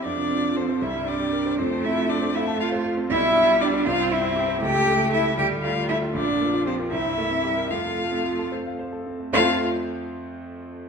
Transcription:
<<
  \new Staff \with { instrumentName = "Violin" } { \time 6/8 \key f \major \tempo 4. = 78 d''4 c''8 e''8 d''4 | c''8 e''8 d''8 e''8 f''8 r8 | e''4 d''8 f''8 e''4 | g''4 e''8 g''8 f''8 e''8 |
d''4 c''8 e''4. | f''4. r4. | f''8 r2 r8 | }
  \new Staff \with { instrumentName = "Cello" } { \time 6/8 \key f \major d'4 c'8 e'8 d'4 | c'8 e'8 d'8 e'8 f'8 r8 | e'4 d'8 f'8 e'4 | g'4 e'8 g'8 f'8 e'8 |
d'4 c'8 e'4. | f'4. r4. | f'8 r2 r8 | }
  \new Staff \with { instrumentName = "Grand piano" } { \time 6/8 \key f \major f,16 c16 c'16 f'16 a'16 c''16 c,16 g,16 c'16 g'16 bes'16 c''16 | f,16 c16 c'16 f'16 a'16 c''16 f''16 a''16 f''16 c''16 f'16 c'16 | b,,16 b,16 d'16 f'16 g'16 d''16 c,16 g,16 c'16 e'16 g'16 c''16 | cis,16 cis16 a16 e'16 a'16 e'16 d,16 a,16 a16 f'16 a'16 f'16 |
bes,,16 f,16 bes16 f'16 g'16 bes'16 c,16 g,16 bes16 c'16 g'16 bes'16 | f,16 c16 a16 c'16 f'16 a'16 c''16 f''16 c''16 a'16 c'16 a16 | <f, f a c' f' c''>8 r2 r8 | }
  \new Staff \with { instrumentName = "Viola" } { \time 6/8 \key f \major f4. g4. | a4. a4. | g4. c'4. | a4. g4. |
f4. c'8 a8 g8 | a2~ a16 r8. | a8 r2 r8 | }
>>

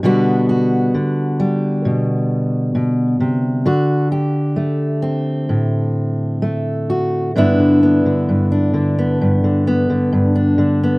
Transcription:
\new Staff \with { instrumentName = "Steel-string acoustic guitar" } { \clef bass \time 4/4 \key g \major \tempo 4 = 66 << { <d g b fis'>8 fis'4 g2~ g8 | fis'8 g'4 c'2 fis'8 | <d b d' e'>8 b8. d'8 b8. b8. d'8 b16 | } \\ { b,4 d4 b,4 b,8 c8 | d4 a4 a,4 a4 | g,16 d8 d16 g,8 d8 g,16 d8 d16 g,8 d8 | } >> }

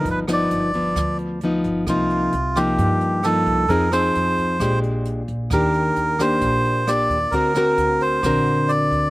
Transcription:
<<
  \new Staff \with { instrumentName = "Melodica" } { \time 4/4 \key g \minor \tempo 4 = 132 b'8 d''2 r4. | f'4. g'4. a'4 | bes'8 c''2 r4. | bes'4. c''4. d''4 |
ais'4. c''4. d''4 | }
  \new Staff \with { instrumentName = "Nylon-string guitar" } { \time 4/4 \key g \minor << { <f b ees'>8 <f b ees'>4 <f b>4. <f b ees'>4 | <f bes ees'>4 r8 <f bes ees'>4. <f bes ees'>4 | <c' ees' aes'>8 <c' ees' aes'>4. <aes d' g'>4. r8 | <bes d' g'>4. <bes d' g'>4. <bes d' g'>8 r8 |
<c' fis' ais'>8 <c' fis' ais'>4. <c' fis' ais'>2 | } \\ { g,2 r2 | c2 g,2 | f2 bes,2 | ees2 bes,2 |
d2 d2 | } >> }
  \new Staff \with { instrumentName = "Upright bass" } { \clef bass \time 4/4 \key g \minor g,,4 g,,4 d,4. g,,8 | c,4 c,4 g,4. c,8 | f,4 f,4 bes,,4. bes,,8 | ees,4 ees,4 bes,,4. ees,8 |
d,4 d,4 ais,,4. d,8 | }
  \new DrumStaff \with { instrumentName = "Drums" } \drummode { \time 4/4 <hh bd>8 <hh ss>8 hh8 <hh bd>8 <hh bd ss>8 hh8 hh8 <hh bd>8 | <hh bd ss>8 hh8 hh8 <hh bd ss>8 <hh bd>8 hh8 <hh ss>8 <hh bd>8 | <hh bd>8 <hh ss>8 hh8 <hh bd>8 <hh bd ss>8 hh8 hh8 <hh bd>8 | <hh bd ss>8 hh8 hh8 <hh bd ss>8 <hh bd>8 hh8 <hh ss>8 <hh bd>8 |
<hh bd>8 <hh ss>8 hh8 <hh bd>8 <hh bd ss>8 hh8 hh8 <hh bd>8 | }
>>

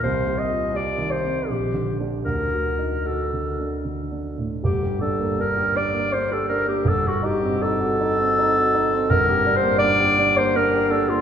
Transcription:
<<
  \new Staff \with { instrumentName = "Clarinet" } { \time 3/4 \key g \minor \tempo 4 = 81 c''8 ees''8 d''8 c''8 g'8. r16 | bes'4 a'4 r4 | g'8 a'8 bes'8 d''8 c''16 a'16 bes'16 g'16 | a'16 fis'16 g'8 a'2 |
\tuplet 3/2 { bes'4 c''8 } d''8. c''16 bes'8 a'16 f'16 | }
  \new Staff \with { instrumentName = "Grand piano" } { \time 3/4 \key g \minor \tuplet 3/2 { c,8 g'8 f'8 g'8 ees8 c'8 bes,,8 d8 <d' g'>8 } | \tuplet 3/2 { d,8 fis'8 ees'8 fis'8 d8 d'8 d8 d'8 a,8 } | g,,16 g'16 d'16 bes16 d'16 g'16 d'16 bes16 d'16 g'16 d'16 bes16 | g,,16 fis'16 dis'16 c'16 dis'16 fis'16 dis'16 c'16 dis'16 fis'16 dis'16 c'16 |
g,,16 g'16 d'16 bes16 d'16 g'16 d'16 bes16 d'16 g'16 d'16 bes16 | }
>>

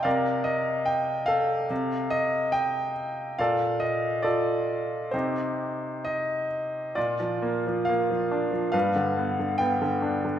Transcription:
<<
  \new Staff \with { instrumentName = "Grand piano" } { \time 4/4 \key c \dorian \tempo 4 = 70 << { f''8 ees''8 g''8 f''4 ees''8 g''4 | f''8 ees''8 d''4 c''4 ees''4 | d''4 f''4 f''4 g''4 | } \\ { <bes' d''>4. a'4. ees''4 | <a' d''>4 <f' a'>4 <ees' g'>2 | f'2 b'2 | } >> }
  \new Staff \with { instrumentName = "Grand piano" } { \clef bass \time 4/4 \key c \dorian c2 c2 | bes,2 c2 | bes,16 f16 bes16 f16 bes16 f16 d'16 f16 g,16 d16 b16 d16 b16 d16 d'16 d16 | }
>>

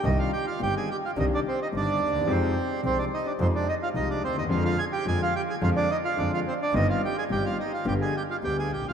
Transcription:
<<
  \new Staff \with { instrumentName = "Bandoneon" } { \time 4/4 \key c \minor \tempo 4 = 108 <ees' ees''>16 <f' f''>16 <g' g''>16 <f' f''>16 <g' g''>16 <aes' aes''>16 <g' g''>16 <f' f''>16 <ees' ees''>16 <d' d''>16 <c' c''>16 <ees' ees''>16 <d' d''>4 | <c' c''>4 <c' c''>16 <d' d''>16 <ees' ees''>16 <d' d''>16 <c' c''>16 <d' d''>16 <ees' ees''>16 <f' f''>16 <ees' ees''>16 <d' d''>16 <c' c''>16 <ees' ees''>16 | <f' f''>16 <f' f''>16 <aes' aes''>16 <g' g''>16 <aes' aes''>16 <f' f''>16 <g' g''>16 <aes' aes''>16 <f' f''>16 <d' d''>16 <ees' ees''>16 <f' f''>16 <d' d''>16 <f' f''>16 <c' c''>16 <d' d''>16 | <ees' ees''>16 <f' f''>16 <g' g''>16 <aes' aes''>16 <g' g''>16 <f' f''>16 <ees' ees''>16 <f' f''>16 <g' g''>16 <aes' aes''>16 <g' g''>16 <f' f''>16 <g' g''>16 <aes' aes''>16 <g' g''>16 <f' f''>16 | }
  \new Staff \with { instrumentName = "Grand piano" } { \clef bass \time 4/4 \key c \minor <c, c ees g d'>8 r8 <g,, g, c ees g d'>8 r8 <c, c ees g d'>8 r8 <g,, g, c ees g d'>8 r32 d,32 ees,32 e,32 | <f, c f aes ees'>8 r8 <c, c f aes ees'>8 r8 <f, c f aes ees'>8 r8 <c, c f aes ees'>8 r32 d,32 ees,32 e,32 | <f, d f aes f'>8 r8 <f, d f aes f'>8 r8 <f, d f aes f'>8 r8 <f, d f aes f'>8 r8 | <g,, g, ees g c' g'>8 r8 <g,, g, ees g c' g'>8 r8 <g,, g, d g b g'>8 r8 <d, d g b g'>8 r32 a,,32 bes,,32 r32 | }
  \new Staff \with { instrumentName = "Double bass" } { \clef bass \time 4/4 \key c \minor c,8 r8 g,,8 r8 c,8 r8 g,,8 ees,8 | f,8 r8 c,8 r8 f,8 r8 c,8 ees,8 | f,8 r8 f,8 r8 f,8 r8 f,8 r8 | g,,8 r8 g,,8 r8 g,,8 r8 d,8 bes,,8 | }
>>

